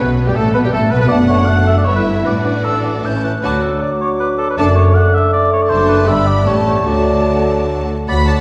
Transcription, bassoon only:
0.00 B3
0.28 G3
0.37 A3
0.55 B3
0.65 G3
0.74 A3
0.93 B3
1.02 B3
1.11 A3
1.30 A3
1.48 A3
1.69 A3
1.88 E3
2.07 E3
2.25 E3
2.45 E3
2.65 E3
2.85 E3
3.05 E3
3.24 E3
3.44 F#3
4.59 A3
6.08 G3
6.87 F#3
8.09 F#3
8.28 F#3

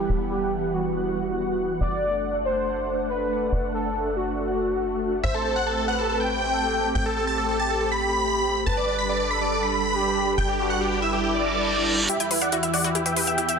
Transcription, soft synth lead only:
Already playing: G4
0.31 G4
0.74 F#4
1.81 D5
2.45 C5
3.09 B4
3.74 A4
4.17 F#4
5.24 C5
5.88 B4
6.52 A4
7.16 A4
7.59 G4
8.66 B4
9.31 A4
9.95 G4
10.59 F#4
11.02 E4

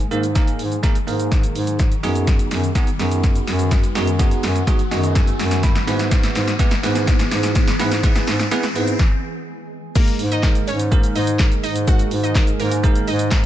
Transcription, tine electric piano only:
0.11 A#3 D#4 G#4 A#4
0.35 A#3 D#4 G#4 A#4
0.83 A#3 D#4 G#4 A#4
1.07 A#3 D#4 G#4 A#4
2.03 B3 D#4 F#4 G#4
2.75 B3 D#4 F#4 G#4
2.99 B3 D#4 F#4 G#4
3.95 B3 D#4 F#4 G#4
4.19 B3 D#4 F#4 G#4
4.67 B3 D#4 F#4 G#4
4.91 B3 D#4 F#4 G#4 D#5
5.15 G#5
5.63 B5
5.87 B3 E4 G#4 B4
6.59 B3 E4 G#4 B4
6.83 B3 E4 G#4 B4
7.79 B3 E4 G#4 B4
8.03 B3 E4 G#4 B4
8.51 B3 E4 G#4 B4
8.75 B3 E4 G#4 B4
9.95 G#3 A#3 D#4 G#4 A#4
10.43 G#3 A#3 D#4 G#4 A#4
10.91 G#3 A#3 D#4 G#4 A#4
11.39 G#3 A#3 D#4 G#4 A#4
11.87 G#3 A#3 D#4 G#4 A#4
12.35 G#3 A#3 D#4 G#4 A#4
12.83 G#3 A#3 D#4 G#4 A#4
13.31 G#3 A#3 D#4 G#4 A#4

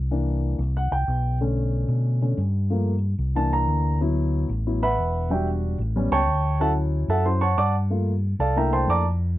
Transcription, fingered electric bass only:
Already playing: C2
0.59 C2
0.91 C2
1.08 B1
1.88 B2
2.37 G2
3.19 C2
3.68 D2
4.49 A1
4.98 E1
5.79 A1
6.12 C#2
6.27 D2
7.08 F#2
7.57 G2
8.39 C2
8.88 F2

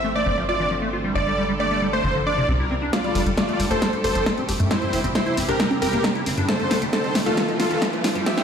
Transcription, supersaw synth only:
0.15 D5
0.49 D5
1.15 D5
1.60 D5
1.93 C5
2.27 D5
2.93 F4 D5
3.38 F4 D5
3.71 A4 C5
4.04 A4 C5
4.71 E4 C5
5.15 E4 C5
5.48 G4 A#4
5.82 G4 A#4
6.49 A4 C5
6.93 A4 C5
7.26 F4 A4
7.60 F4 A4
8.26 G4 E5

